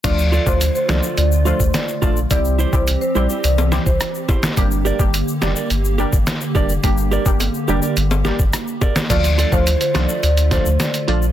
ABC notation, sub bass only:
X:1
M:4/4
L:1/16
Q:1/4=106
K:Dm
V:1 name="Sub bass" clef=bass
D,,3 D,,2 z C,, z D,,3 D,, z2 B,,,2 | C,,3 C,,2 z B,,, z C,,3 C,, z4 | G,,,3 G,,,2 z F,,, z G,,,3 G,,, z2 F,,,2 | G,,,3 G,,,2 z F,,, z G,,,3 G,,, z4 |
D,,3 D,,2 z C,, z D,,3 D,, z2 B,,,2 |]